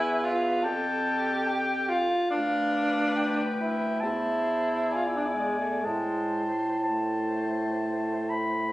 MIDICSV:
0, 0, Header, 1, 5, 480
1, 0, Start_track
1, 0, Key_signature, 0, "minor"
1, 0, Tempo, 829876
1, 1333, Time_signature, 4, 2, 24, 8
1, 1333, Tempo, 865801
1, 2773, Tempo, 933126
1, 3253, Tempo, 980392
1, 4668, End_track
2, 0, Start_track
2, 0, Title_t, "Clarinet"
2, 0, Program_c, 0, 71
2, 0, Note_on_c, 0, 80, 70
2, 264, Note_off_c, 0, 80, 0
2, 362, Note_on_c, 0, 81, 64
2, 850, Note_on_c, 0, 79, 58
2, 859, Note_off_c, 0, 81, 0
2, 1175, Note_off_c, 0, 79, 0
2, 1328, Note_on_c, 0, 77, 57
2, 1782, Note_off_c, 0, 77, 0
2, 1806, Note_on_c, 0, 79, 50
2, 2276, Note_on_c, 0, 81, 49
2, 2284, Note_off_c, 0, 79, 0
2, 2769, Note_off_c, 0, 81, 0
2, 2778, Note_on_c, 0, 80, 45
2, 3260, Note_on_c, 0, 81, 40
2, 3267, Note_off_c, 0, 80, 0
2, 3739, Note_off_c, 0, 81, 0
2, 3745, Note_on_c, 0, 81, 43
2, 4460, Note_on_c, 0, 83, 37
2, 4467, Note_off_c, 0, 81, 0
2, 4668, Note_off_c, 0, 83, 0
2, 4668, End_track
3, 0, Start_track
3, 0, Title_t, "Alto saxophone"
3, 0, Program_c, 1, 65
3, 0, Note_on_c, 1, 71, 72
3, 372, Note_on_c, 1, 69, 59
3, 381, Note_off_c, 1, 71, 0
3, 1176, Note_off_c, 1, 69, 0
3, 1335, Note_on_c, 1, 71, 59
3, 2263, Note_off_c, 1, 71, 0
3, 2284, Note_on_c, 1, 72, 45
3, 2777, Note_on_c, 1, 74, 41
3, 2785, Note_off_c, 1, 72, 0
3, 3250, Note_off_c, 1, 74, 0
3, 3253, Note_on_c, 1, 72, 37
3, 3726, Note_off_c, 1, 72, 0
3, 3738, Note_on_c, 1, 72, 41
3, 4668, Note_off_c, 1, 72, 0
3, 4668, End_track
4, 0, Start_track
4, 0, Title_t, "Tenor saxophone"
4, 0, Program_c, 2, 66
4, 0, Note_on_c, 2, 64, 111
4, 136, Note_on_c, 2, 65, 83
4, 145, Note_off_c, 2, 64, 0
4, 372, Note_on_c, 2, 67, 82
4, 380, Note_off_c, 2, 65, 0
4, 1094, Note_on_c, 2, 65, 78
4, 1103, Note_off_c, 2, 67, 0
4, 1330, Note_off_c, 2, 65, 0
4, 1333, Note_on_c, 2, 62, 78
4, 1958, Note_off_c, 2, 62, 0
4, 2052, Note_on_c, 2, 64, 58
4, 2281, Note_off_c, 2, 64, 0
4, 2284, Note_on_c, 2, 64, 63
4, 2802, Note_on_c, 2, 65, 51
4, 2810, Note_off_c, 2, 64, 0
4, 2859, Note_on_c, 2, 64, 47
4, 2867, Note_off_c, 2, 65, 0
4, 2906, Note_on_c, 2, 62, 44
4, 2914, Note_off_c, 2, 64, 0
4, 2956, Note_on_c, 2, 64, 44
4, 2963, Note_off_c, 2, 62, 0
4, 3006, Note_on_c, 2, 56, 51
4, 3013, Note_off_c, 2, 64, 0
4, 3124, Note_off_c, 2, 56, 0
4, 3127, Note_on_c, 2, 57, 51
4, 3249, Note_on_c, 2, 56, 52
4, 3256, Note_off_c, 2, 57, 0
4, 3573, Note_off_c, 2, 56, 0
4, 3738, Note_on_c, 2, 57, 40
4, 4668, Note_off_c, 2, 57, 0
4, 4668, End_track
5, 0, Start_track
5, 0, Title_t, "Bass clarinet"
5, 0, Program_c, 3, 71
5, 0, Note_on_c, 3, 40, 68
5, 366, Note_on_c, 3, 41, 64
5, 374, Note_off_c, 3, 40, 0
5, 1173, Note_off_c, 3, 41, 0
5, 1334, Note_on_c, 3, 38, 54
5, 2290, Note_on_c, 3, 40, 46
5, 2298, Note_off_c, 3, 38, 0
5, 3256, Note_off_c, 3, 40, 0
5, 3259, Note_on_c, 3, 45, 39
5, 4668, Note_off_c, 3, 45, 0
5, 4668, End_track
0, 0, End_of_file